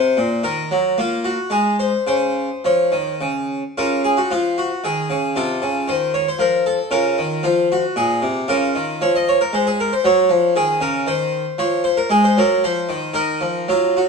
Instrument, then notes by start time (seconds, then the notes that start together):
harpsichord
Already playing: C3 C5
0.17 A#2
0.44 D#3 A#4
0.71 F#3
0.98 A#3 F4
1.24 F#4
1.50 G#3 G#4
1.79 C5
2.07 C#3 C5
2.65 F3 C#5
2.92 D#3
3.21 C#3
3.78 C#3 F4 A#4
4.05 G#4
4.17 F#4
4.31 F3 F4
4.58 F#4
4.84 D#3 G#4
5.10 C#3
5.36 C3 F4 A4
5.62 C#3
5.88 D#3 C5
6.14 C#5
6.28 C5
6.39 F3 A#4
6.66 A4
6.91 C#3 F4 A#4
7.18 D#3
7.43 F3 F4
7.72 F#4
7.96 A#2 G#4
8.22 C3
8.48 C#3 F4 A#4
8.75 D#3
9.01 F3 C#5
9.16 D#5
9.29 C#5
9.41 A#4
9.53 G#3 C5
9.67 G#4
9.80 A#4
9.93 C5
10.04 F#3 C#5
10.30 F3
10.56 D#3 G#4
10.81 C#3 A#4
11.07 D#3 C5
11.58 F3 C#5
11.84 C5
11.97 A#4
12.10 G#3 G#4
12.24 C5
12.37 F#3 A#4
12.64 F3 C5
12.89 D#3
13.14 D#3 D#4 A#4
13.41 F3
13.68 F#3 F4
13.97 F#4